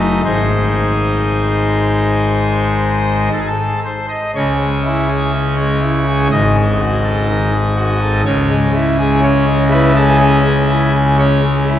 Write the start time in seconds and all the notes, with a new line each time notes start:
Already playing: F#1 F#2 A3 D#4 D#5
0.24 G#1 G#2 G#3 D#4 C5
3.32 A4
3.40 G#4
3.48 A4
3.85 C5
4.09 D#5
4.35 C#2 C#3 C#5
4.60 G#3
4.85 E4
5.09 G#4
5.33 C#4
5.57 G#3
5.82 E4
6.06 G#4
6.31 G#1 G#2 D#5
6.56 G#3
6.80 F#4
7.04 A4
7.28 D#3
7.53 G#3
7.77 F#4
8.02 A4
8.25 C#2 C#3 C#5
8.51 G#3
8.74 E4
8.99 G#4
9.23 C#4 C#5
9.47 G#3
9.71 E4 B4
9.96 G#4 A4
10.19 C#4 G#4
10.44 G#3
10.69 E4
10.95 G#4
11.19 C#4 C#5
11.43 G#3
11.67 E4